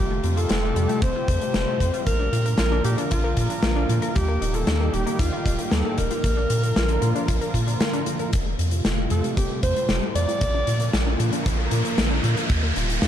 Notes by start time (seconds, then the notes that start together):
Already playing: C3 G3 A3 F4 G4
0.00 F1
0.11 A3
0.24 F2 C4, closed hi-hat
0.37 F4 A4, closed hi-hat
0.49 F1 C4, snare, closed hi-hat
0.63 A3
0.76 F2 G3, closed hi-hat
0.89 A3, closed hi-hat
1.02 F1 C4 C5, kick, closed hi-hat
1.15 F4
1.28 F2 C4, kick, closed hi-hat
1.41 A3, closed hi-hat
1.54 F1 G3, snare, closed hi-hat
1.68 A3
1.80 F2 C4, kick, closed hi-hat
1.93 F4, closed hi-hat
2.06 A#1 D3 F3 A#3 A#4, kick, closed hi-hat
2.20 D4
2.33 A#2 F4, closed hi-hat
2.46 A#4, closed hi-hat
2.58 A#1 F4 A#4, snare, closed hi-hat
2.72 D4
2.84 A#2 A#3 G4, closed hi-hat
2.98 D4, closed hi-hat
3.11 A#1 F4, kick, closed hi-hat
3.24 A#4
3.37 A#2 F4, kick, closed hi-hat
3.50 D4, closed hi-hat
3.62 A#1 A#3 F4, snare, closed hi-hat
3.76 D4
3.89 A#2 F4, closed hi-hat
4.02 A#4, closed hi-hat
4.15 D#2 D#3 G3 G4, kick, closed hi-hat
4.28 A#3
4.41 D#1 D#4, closed hi-hat
4.54 F4 A4, closed hi-hat
4.67 D#2 D#4, snare, closed hi-hat
4.80 A#3
4.93 D#1 G3 G4, closed hi-hat
5.06 A#3, closed hi-hat
5.19 D#2 D#4 F4, kick, closed hi-hat
5.33 F4
5.46 D#1 D#4, kick, closed hi-hat
5.59 A#3, closed hi-hat
5.71 D#2 G3 A4, snare, closed hi-hat
5.85 A#3
5.98 D#1 D#4 A#4, kick, closed hi-hat
6.11 F4, closed hi-hat
6.24 A#1 D3 F3 A#3 F4 A#4, kick, closed hi-hat
6.37 D4
6.50 A#2 F4, closed hi-hat
6.63 A#4, closed hi-hat
6.76 A#1 F4, snare, closed hi-hat
6.89 D4, closed hi-hat
7.02 A#2 A#3, closed hi-hat
7.15 D4, closed hi-hat
7.28 A#1 F4, kick, closed hi-hat
7.41 A#4, closed hi-hat
7.54 A#2 F4, kick, closed hi-hat
7.67 D4, closed hi-hat
7.80 A#3, snare, closed hi-hat
7.93 D4, closed hi-hat
8.06 F4, closed hi-hat
8.19 A#4, closed hi-hat
8.32 F1 C3 G3 A3 F4 G4, kick, closed hi-hat, riser
8.46 A3
8.59 F2 C4, closed hi-hat
8.71 F4, closed hi-hat
8.85 F1 C4, snare, closed hi-hat
8.98 A3
9.10 F2 G3 A4, closed hi-hat
9.24 A3, closed hi-hat
9.37 F1 C4 G4, kick, closed hi-hat
9.50 F4
9.63 F2 C4 C5, kick, closed hi-hat
9.76 A3, closed hi-hat
9.89 F1 G3, snare, closed hi-hat
10.02 A3
10.15 F2 C4 D5, closed hi-hat
10.28 F4, closed hi-hat
10.41 A#1 D3 F3 A#3 F4 A#4, kick, closed hi-hat
10.54 D4
10.67 A#2 F4, closed hi-hat
10.80 A#4, closed hi-hat
10.93 A#1 F4, snare, closed hi-hat
11.07 D4
11.20 A#2 A#3, closed hi-hat
11.33 D4, closed hi-hat
11.46 A#1 F4, kick, closed hi-hat
11.59 A#4
11.71 A#2 F4, closed hi-hat
11.85 D4, closed hi-hat
11.98 A#1 A#3, snare, closed hi-hat
12.11 D4
12.24 A#2 F4, closed hi-hat
12.37 A#4, closed hi-hat
12.49 D#2 D#3 G3 A#3 G4, kick, closed hi-hat
12.63 A#3
12.76 D#1 D#4, closed hi-hat
12.89 F4, closed hi-hat
13.02 D#2 D#4, snare, closed hi-hat